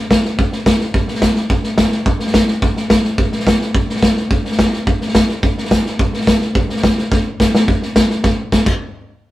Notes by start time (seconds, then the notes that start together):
0.11 kick, snare, hi-hat pedal
0.25 snare
0.39 kick, snare
0.52 snare
0.66 kick, snare, hi-hat pedal
0.80 snare
0.94 kick, snare
1.08 snare
1.15 snare
1.22 kick, snare, hi-hat pedal
1.36 snare
1.50 kick, snare
1.64 snare
1.78 kick, snare, hi-hat pedal
1.92 snare
2.05 kick, snare
2.19 snare
2.27 snare
2.34 kick, snare, hi-hat pedal
2.48 snare
2.62 kick, snare
2.77 snare
2.90 kick, snare, hi-hat pedal
3.04 snare
3.18 kick, snare
3.32 snare
3.40 snare
3.47 kick, snare, hi-hat pedal
3.61 snare
3.75 kick, snare
3.89 snare
3.96 snare
4.03 kick, snare, hi-hat pedal
4.17 snare
4.31 kick, snare
4.45 snare
4.52 snare
4.59 kick, snare, hi-hat pedal
4.73 snare
4.87 kick, snare
5.01 snare
5.08 snare
5.15 kick, snare, hi-hat pedal
5.29 snare
5.43 kick, snare
5.58 snare
5.65 snare
5.71 kick, snare, hi-hat pedal
5.86 snare
5.99 kick, snare
6.14 snare
6.21 snare
6.27 kick, snare, hi-hat pedal
6.41 snare
6.55 kick, snare
6.69 snare
6.76 snare
6.83 kick, snare, hi-hat pedal
6.98 snare
7.12 kick, snare
7.40 kick, snare, hi-hat pedal
7.55 snare
7.68 kick, snare
7.82 snare
7.96 kick, snare, hi-hat pedal
8.10 snare
8.24 kick, snare
8.52 kick, snare, hi-hat pedal
8.66 kick, crash